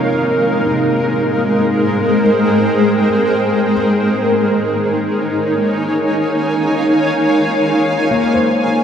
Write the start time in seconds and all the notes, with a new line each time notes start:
Already playing: C3 F3 G#3 D#4 F4 G#4 A#4 F5
0.67 C3 C5
1.38 G5
3.71 D#4
4.00 C#5
4.45 G#5
5.27 F5
8.03 F4
8.11 A#3
8.34 C5